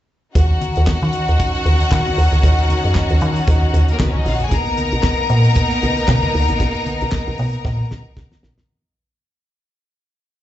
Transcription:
0.35 fm bass D#2, string section D#3 C#4 D#4 F#4 F#5, kick, closed hi-hat, muted conga, low conga
0.50 muted conga
0.61 closed hi-hat, high conga
0.76 fm bass D#2, closed hi-hat
0.87 fm bass D#3, kick, snare, clap, muted conga
1.01 fm bass D#3, closed hi-hat, muted conga
1.13 closed hi-hat
1.28 fm bass D#2, closed hi-hat
1.39 kick, closed hi-hat, muted conga
1.66 fm bass D#2, closed hi-hat, high conga
1.80 closed hi-hat
1.92 fm bass D#3, kick, snare, clap, high conga
2.06 closed hi-hat, muted conga, high conga, low conga
2.18 fm bass D#2, open hi-hat
2.32 fm bass D2, closed hi-hat, high conga, low conga
2.43 fm bass D#2, kick, closed hi-hat, low conga
2.58 closed hi-hat, muted conga
2.68 closed hi-hat, high conga
2.84 fm bass F#2, closed hi-hat
2.95 kick, snare, clap
3.10 fm bass D#2, closed hi-hat
3.21 fm bass D#3, closed hi-hat
3.36 closed hi-hat
3.47 fm bass D#2, kick, closed hi-hat, muted conga
3.61 muted conga
3.74 fm bass D#2, closed hi-hat, high conga
3.88 string section A#3 A#4, closed hi-hat
3.99 fm bass C#2, string section B3 B4, kick, snare, clap, muted conga, high conga
4.08 string section C#4 C#5
4.14 string section D#5, muted conga, high conga, low conga
4.18 string section D#4
4.26 fm bass A#1, string section F4 F5, snare, open hi-hat
4.35 string section F#4 F#5
4.40 string section G#4, closed hi-hat, high conga, low conga
4.44 string section G#5
4.51 fm bass B1, string section A#3 B3 D#4 A#4 A#5, kick, closed hi-hat, muted conga, low conga
4.66 closed hi-hat, muted conga
4.77 closed hi-hat, high conga
4.92 fm bass B1, closed hi-hat
5.03 kick, snare, clap, muted conga
5.17 closed hi-hat
5.29 fm bass A#2, closed hi-hat
5.44 closed hi-hat
5.55 kick, closed hi-hat
5.71 closed hi-hat
5.82 fm bass B1, closed hi-hat, high conga
5.97 closed hi-hat
6.08 fm bass B2, kick, snare, clap, high conga
6.23 closed hi-hat, muted conga, high conga, low conga
6.34 fm bass C#2, open hi-hat
6.48 fm bass A#1, closed hi-hat, high conga, low conga
6.60 fm bass B1, kick, closed hi-hat, muted conga, low conga
6.75 closed hi-hat
6.86 closed hi-hat, high conga
7.01 fm bass B1, closed hi-hat
7.12 kick, snare, clap, muted conga
7.27 fm bass B1, muted conga
7.38 fm bass B2, open hi-hat
7.53 closed hi-hat
7.65 fm bass A#2, kick, snare, muted conga
7.91 fm bass B1, snare, high conga
8.17 fm bass B1, kick, snare, muted conga, high conga
8.32 snare, high conga, low conga
8.43 fm bass A#1, snare
8.58 snare, high conga, low conga

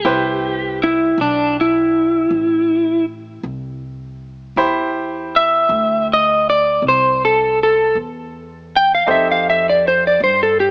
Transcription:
Already playing: electric slide guitar A4
0.05 upright bass C2, grand piano E4 G4 B4 C5, electric slide guitar G4
0.83 electric slide guitar E4
1.18 upright bass B1, electric slide guitar D4
1.61 electric slide guitar E4
2.30 upright bass A1
3.43 upright bass C2
4.56 upright bass E2, grand piano E4 G4 C5 B5
5.36 electric slide guitar E5
5.69 upright bass D2
6.13 electric slide guitar D#5
6.50 electric slide guitar D5
6.82 upright bass C2
6.88 electric slide guitar C5
7.25 electric slide guitar A4
7.63 electric slide guitar A4
7.95 upright bass E2
8.76 electric slide guitar G5
8.95 electric slide guitar F5
9.07 upright bass F2, grand piano D#4 G4 A4 C5
9.11 electric slide guitar E5
9.31 electric slide guitar F5
9.50 electric slide guitar E5
9.70 electric slide guitar D5
9.88 electric slide guitar C5
10.07 electric slide guitar D5
10.20 upright bass G2, electric slide guitar C5
10.43 electric slide guitar A4
10.60 electric slide guitar G4

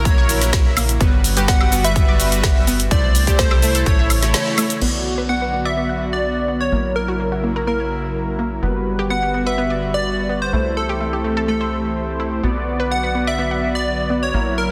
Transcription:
Already playing: analog synth bass A#1, analog synth pad C#3 F#3 A#3 E4
0.05 supersaw synth F#3 E4 A#4, synth pluck A#3, digital synth lead C#5, synth bell C#5, kick, closed hi-hat, shaker
0.18 synth pluck C#5
0.29 supersaw synth F#3 E4 A#4, open hi-hat, shaker
0.41 snare, closed hi-hat, shaker
0.53 kick, snare, closed hi-hat, shaker
0.65 supersaw synth F#3 E4 E5
0.77 synth pluck A#3, open hi-hat, high woodblock, shaker
0.89 closed hi-hat, shaker
1.01 analog synth bass G1, analog synth pad D3 G3 B3 F#4, supersaw synth G3 F#4 B4, synth pluck B3, kick, closed hi-hat, shaker
1.24 open hi-hat, shaker
1.37 supersaw synth G3 F#4 B4, synth pluck G4, closed hi-hat, shaker
1.48 synth pluck B3, digital synth lead F#5, synth bell F#5, kick, snare, closed hi-hat, shaker
1.61 synth pluck G4, high woodblock
1.72 supersaw synth G3 F#4 B4, synth pluck B3, open hi-hat, shaker
1.84 synth pluck B4, synth bell E5, digital synth lead E5, closed hi-hat, shaker
1.96 supersaw synth G3 F#4 B4, synth pluck B3, kick, closed hi-hat, shaker
2.08 synth pluck D5
2.20 supersaw synth G3 F#4 B4, open hi-hat, shaker
2.32 closed hi-hat, shaker
2.43 kick, snare, closed hi-hat, shaker
2.56 supersaw synth G3 F#4 E5
2.67 synth pluck B3, open hi-hat, shaker
2.80 closed hi-hat, shaker
2.91 analog synth bass C2, analog synth pad C3 A3 E4, supersaw synth A3 E4 C5, synth pluck A3, digital synth lead D5, synth bell D5, kick, closed hi-hat, shaker
3.15 open hi-hat, shaker
3.27 supersaw synth A3 E4 C5, synth pluck G4, kick, closed hi-hat, shaker
3.39 synth pluck A3, digital synth lead C5, synth bell C5, kick, snare, closed hi-hat, shaker
3.51 synth pluck G4, high woodblock
3.62 supersaw synth A3 E4 C5, synth pluck A3, open hi-hat, shaker
3.75 synth pluck A4, closed hi-hat, shaker
3.86 analog synth bass A1, analog synth pad C#3 E3, supersaw synth A3 E4 C#5, synth pluck A3, digital synth lead C#5, synth bell C#5, kick, closed hi-hat, shaker
3.99 synth pluck E5
4.10 open hi-hat, high woodblock, shaker
4.22 supersaw synth A3 E4 C#5, snare, closed hi-hat, shaker
4.34 snare, closed hi-hat, shaker
4.58 supersaw synth A3 E4 C#5, synth pluck A3, open hi-hat, high woodblock, shaker
4.70 closed hi-hat, shaker
4.82 analog synth bass B1, analog synth pad D3 F#3 B3 F#4, supersaw synth B3 F#4 D5, synth pluck B3, crash
5.18 synth pluck B4
5.29 synth pluck B3, digital synth lead F#5
5.42 synth pluck B4
5.53 synth pluck B3
5.65 synth pluck D5, digital synth lead E5
5.77 synth pluck B3
5.89 synth pluck F#5
6.13 digital synth lead D5
6.48 synth pluck B3
6.61 digital synth lead C#5
6.72 analog synth bass A#1, analog synth pad C#3 F#3 A#3 E4, supersaw synth F#3 E4 A#4, synth pluck A#3
6.96 digital synth lead A#4
7.08 synth pluck F#4
7.20 synth pluck A#3
7.32 synth pluck F#4
7.44 synth pluck A#3
7.56 synth pluck A#4
7.67 synth pluck A#3, digital synth lead A#4
7.80 synth pluck C#5
8.39 synth pluck A#3
8.62 analog synth bass G1, analog synth pad D3 G3 B3 F#4, supersaw synth G3 F#4 B4, synth pluck B3
8.99 synth pluck G4
9.10 synth pluck B3, digital synth lead F#5
9.23 synth pluck G4
9.34 synth pluck B3
9.46 synth pluck B4, digital synth lead E5
9.58 synth pluck B3
9.70 synth pluck D5
9.94 digital synth lead D5
10.29 synth pluck B3
10.42 digital synth lead C5
10.53 analog synth bass C2, analog synth pad E3 A3 C4 G4, supersaw synth A3 E4 C5, synth pluck A3
10.77 digital synth lead A4
10.89 synth pluck G4
11.01 synth pluck A3
11.13 synth pluck G4
11.24 synth pluck A3
11.37 synth pluck A4
11.48 synth pluck A3, digital synth lead A4
11.61 synth pluck C5
12.20 synth pluck E4
12.43 analog synth bass B1, analog synth pad D3 F#3 B3 F#4, synth pluck B3, supersaw synth B3 F#4 D5
12.80 synth pluck B4
12.91 synth pluck B3, digital synth lead F#5
13.04 synth pluck B4
13.15 synth pluck B3
13.27 synth pluck D5, digital synth lead E5
13.39 synth pluck B3
13.51 synth pluck F#5
13.75 digital synth lead D5
14.10 synth pluck B3
14.23 digital synth lead C#5
14.34 analog synth bass A#1, analog synth pad C#3 A#3 E4, supersaw synth F#3 E4 A#4, synth pluck A#3
14.58 digital synth lead A#4

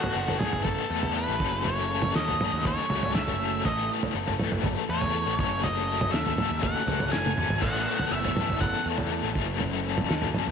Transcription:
Already playing: overdriven electric guitar A2 E3 A3 B3 A4, string machine B3 E4 A4 B4, lead electric guitar F#4
0.04 floor tom
0.14 picked electric bass F#1, overdriven electric guitar E3 A3 B3 A4, tambourine
0.28 floor tom
0.38 overdriven electric guitar A2 E3 A3 B3 A4, lead electric guitar G#4, floor tom, mid tom, tambourine
0.52 picked electric bass F#1, floor tom
0.64 overdriven electric guitar E3 A3 B3 A4, lead electric guitar A4, kick, floor tom, tambourine
0.90 picked electric bass E2, overdriven electric guitar A2 E3 A3 B3 A4, tambourine
1.03 floor tom
1.14 overdriven electric guitar E3 A3 B3 A4, lead electric guitar B4, tambourine
1.28 picked electric bass A1
1.40 picked electric bass F#1, overdriven electric guitar F#2 C#3 F#3 A3 C#4 A4, string machine A3 C#4 F#4 A4, kick, tambourine
1.64 overdriven electric guitar F#2 C#3 F#3 A3 C#4 A4, lead electric guitar C#5, floor tom, tambourine
1.91 overdriven electric guitar F#3 A3 C#4 A4, tambourine
2.02 floor tom, mid tom
2.15 picked electric bass D#2, overdriven electric guitar F#3 A3 C#4 A4, lead electric guitar D#5, snare, tambourine
2.28 floor tom
2.41 overdriven electric guitar F#2 C#3 F#3 A3 C#4 A4, floor tom, mid tom, tambourine
2.53 picked electric bass D#2
2.65 overdriven electric guitar F#3 A3 C#4 A4, lead electric guitar C#5, kick, floor tom, tambourine
2.90 picked electric bass C#2, overdriven electric guitar F#2 C#3 F#3 A3 C#4 A4, floor tom
3.03 floor tom
3.15 overdriven electric guitar F#3 A3 C#4 A4, lead electric guitar E5, snare, mid tom, tambourine
3.28 picked electric bass F#1, floor tom
3.40 overdriven electric guitar F#3 A3 C#4 A4, tambourine
3.64 picked electric bass A1, overdriven electric guitar A2 E3 A3 B3 A4, string machine B3 E4, lead electric guitar D#5, kick, floor tom, tambourine
3.89 overdriven electric guitar A3 B3 A4, tambourine
4.03 floor tom
4.15 picked electric bass F#1, overdriven electric guitar E3 A3 B3 A4, tambourine
4.28 floor tom
4.39 overdriven electric guitar A2 E3 A3 B3 A4, floor tom, mid tom, tambourine
4.52 picked electric bass F#1, floor tom
4.63 overdriven electric guitar E3 A3 B3 A4, kick, floor tom, tambourine
4.88 picked electric bass E2, overdriven electric guitar A2 E3 A3 B3 A4, lead electric guitar C#5
5.01 floor tom
5.12 overdriven electric guitar E3 A3 B3 A4, tambourine
5.26 picked electric bass A1
5.37 picked electric bass F#1, overdriven electric guitar F#2 C#3 F#3 A3 C#4 A4, string machine A3 C#4 F#4 A4, lead electric guitar C#5, kick, tambourine
5.63 overdriven electric guitar F#2 C#3 F#3 A3 C#4 A4, lead electric guitar D#5, floor tom, tambourine
5.86 overdriven electric guitar F#3 A3 C#4 A4, tambourine
6.01 floor tom, mid tom
6.12 picked electric bass D#2, overdriven electric guitar F#3 A3 C#4 A4, lead electric guitar E5, snare, tambourine
6.26 floor tom
6.37 overdriven electric guitar F#2 C#3 F#3 A3 C#4 A4, floor tom, mid tom, tambourine
6.50 picked electric bass D#2
6.61 overdriven electric guitar F#3 A3 C#4 A4, lead electric guitar F#5, kick, floor tom, tambourine
6.86 picked electric bass C#2, overdriven electric guitar F#2 C#3 F#3 A3 C#4 A4, floor tom, tambourine
7.00 floor tom
7.12 picked electric bass F#1, overdriven electric guitar F#3 A3 C#4 A4, lead electric guitar G#5, snare, tambourine
7.26 high tom
7.37 picked electric bass G#1, overdriven electric guitar F#3 A3 C#4 A4, mid tom, tambourine
7.50 floor tom
7.62 picked electric bass A1, overdriven electric guitar A2 E3 A3 B3 A4, string machine B3 E4, lead electric guitar F#5, kick, floor tom, crash, tambourine
7.85 overdriven electric guitar A3 B3 A4, tambourine
7.99 floor tom
8.11 picked electric bass F#1, overdriven electric guitar E3 A3 B3 A4, lead electric guitar E5, tambourine
8.25 floor tom
8.35 overdriven electric guitar A2 E3 A3 B3 A4, floor tom, mid tom, tambourine
8.49 picked electric bass F#1, floor tom
8.61 overdriven electric guitar E3 A3 B3 A4, lead electric guitar F#5, kick, floor tom, tambourine
8.85 picked electric bass E2, overdriven electric guitar A2 E3 A3 B3 A4, tambourine
8.98 floor tom
9.10 overdriven electric guitar E3 A3 B3 A4, tambourine
9.23 picked electric bass A1
9.34 picked electric bass F#1, overdriven electric guitar F#2 C#3 F#3 A3 C#4 A4, string machine C#4 F#4, kick, tambourine
9.58 overdriven electric guitar F#2 C#3 F#3 A3 C#4 A4, floor tom, tambourine
9.82 overdriven electric guitar F#3 A3 C#4 A4, tambourine
9.98 floor tom, mid tom
10.07 picked electric bass D#2, overdriven electric guitar F#3 A3 C#4 A4, snare, tambourine
10.22 floor tom
10.33 overdriven electric guitar F#2 C#3 F#3 A3 C#4 A4, floor tom, mid tom, tambourine
10.47 picked electric bass D#2

